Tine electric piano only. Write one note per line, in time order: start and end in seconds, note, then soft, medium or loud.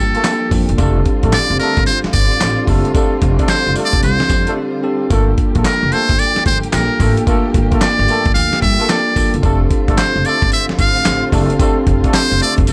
0.00 0.25 A#3 medium
0.00 0.25 D4 medium
0.00 0.25 F4 medium
0.00 0.26 A4 loud
0.25 0.48 A#3 medium
0.25 0.49 D4 medium
0.25 0.49 F4 medium
0.25 0.49 A4 medium
0.52 0.75 A#3 medium
0.52 0.76 D4 medium
0.52 0.76 F4 medium
0.52 0.76 A4 medium
0.79 1.70 C4 medium
0.79 1.70 D4 medium
0.79 1.71 G4 medium
0.79 1.71 A4 loud
2.40 2.64 C4 medium
2.40 2.64 D4 medium
2.40 2.64 G4 medium
2.40 2.65 A4 medium
2.67 2.91 C4 medium
2.67 2.91 D4 medium
2.67 2.91 G4 medium
2.67 2.92 A4 medium
2.94 3.86 C4 medium
2.94 3.86 D4 medium
2.94 3.87 G4 medium
2.94 3.87 A4 loud
4.56 4.80 C4 medium
4.56 4.80 D4 medium
4.56 4.81 G4 medium
4.56 4.81 A4 medium
4.83 5.07 C4 medium
4.83 5.07 D4 medium
4.83 5.07 G4 medium
4.83 5.08 A4 loud
5.10 6.02 A#3 medium
5.10 6.02 D4 medium
5.10 6.03 F4 medium
5.10 6.03 A4 medium
6.73 6.97 A#3 medium
6.73 6.97 D4 medium
6.73 6.97 F4 medium
6.73 6.97 A4 medium
6.99 7.24 A#3 medium
6.99 7.24 D4 medium
6.99 7.24 F4 medium
6.99 7.24 A4 medium
7.26 8.19 A#3 loud
7.26 8.19 D4 medium
7.26 8.19 F4 medium
7.26 8.19 A4 loud
8.89 9.13 A#3 medium
8.89 9.13 D4 medium
8.89 9.13 F4 medium
8.89 9.13 A4 medium
9.16 9.40 A#3 medium
9.16 9.40 D4 medium
9.16 9.40 F4 medium
9.16 9.41 A4 medium
9.43 10.35 C4 medium
9.43 10.35 D4 medium
9.43 10.35 G4 medium
9.43 10.36 A4 medium
11.05 11.29 C4 medium
11.05 11.29 D4 medium
11.05 11.29 G4 medium
11.05 11.30 A4 medium
11.32 11.56 C4 medium
11.32 11.56 D4 medium
11.32 11.57 G4 medium
11.32 11.57 A4 medium
11.59 12.51 C4 medium
11.59 12.51 D4 medium
11.59 12.51 G4 medium
11.59 12.52 A4 loud